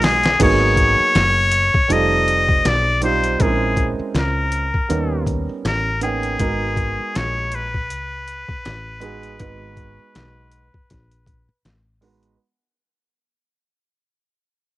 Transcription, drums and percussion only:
0.02 snare loud
0.02 open hi-hat medium
0.23 snare loud
0.23 closed hi-hat medium
0.40 kick loud
0.40 closed hi-hat medium
0.40 crash medium
0.76 kick medium
0.76 closed hi-hat medium
1.15 snare loud
1.15 closed hi-hat medium
1.52 closed hi-hat medium
1.74 kick medium
1.90 closed hi-hat medium
2.28 closed hi-hat medium
2.49 kick medium
2.65 snare loud
2.65 closed hi-hat medium
3.02 closed hi-hat medium
3.24 closed hi-hat soft
3.40 kick loud
3.40 closed hi-hat loud
3.77 kick medium
3.77 closed hi-hat medium
4.15 snare loud
4.15 closed hi-hat medium
4.52 closed hi-hat medium
4.74 kick medium
4.90 closed hi-hat loud
5.26 kick medium
5.26 closed hi-hat medium
5.65 snare loud
5.65 closed hi-hat medium
6.01 closed hi-hat medium
6.23 closed hi-hat soft
6.39 kick loud
6.39 closed hi-hat medium
6.76 kick medium
6.76 closed hi-hat medium
7.15 snare loud
7.15 closed hi-hat medium
7.52 closed hi-hat medium
7.74 kick medium
7.90 closed hi-hat loud
8.28 closed hi-hat medium
8.49 kick medium
8.65 snare loud
8.65 closed hi-hat medium
9.01 closed hi-hat medium
9.23 closed hi-hat soft
9.39 kick loud
9.39 closed hi-hat medium
9.77 kick medium
9.77 closed hi-hat medium
10.15 snare medium
10.15 closed hi-hat medium
10.51 closed hi-hat medium
10.74 kick medium
10.90 kick medium
10.90 snare soft
10.90 closed hi-hat medium
11.11 closed hi-hat soft
11.27 kick medium
11.27 closed hi-hat medium
11.65 snare medium
11.65 closed hi-hat medium
12.02 open hi-hat soft
12.23 closed hi-hat soft

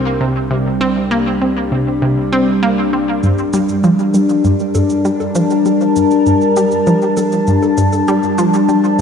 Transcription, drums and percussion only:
3.23 cabasa soft
3.38 cabasa soft
3.53 cabasa medium
3.69 cabasa soft
3.84 cabasa soft
3.99 cabasa soft
4.14 cabasa medium
4.29 cabasa soft
4.44 cabasa soft
4.60 cabasa soft
4.75 low bongo medium
4.75 cabasa medium
4.90 cabasa soft
5.05 cabasa soft
5.20 low bongo medium
5.20 cabasa soft
5.35 cabasa medium
5.50 cabasa medium
5.65 cabasa soft
5.81 cabasa soft
5.96 cabasa medium
6.11 cabasa medium
6.26 cabasa medium
6.41 cabasa soft
6.56 cabasa medium
6.71 cabasa medium
6.87 cabasa medium
7.02 cabasa soft
7.17 low bongo medium
7.17 cabasa loud
7.32 cabasa medium
7.47 cabasa soft
7.62 low bongo medium
7.62 cabasa soft
7.77 cabasa medium
7.93 low bongo medium
7.93 cabasa medium
8.08 cabasa medium
8.23 cabasa soft
8.38 cabasa medium
8.54 cabasa medium
8.69 cabasa medium
8.84 cabasa soft

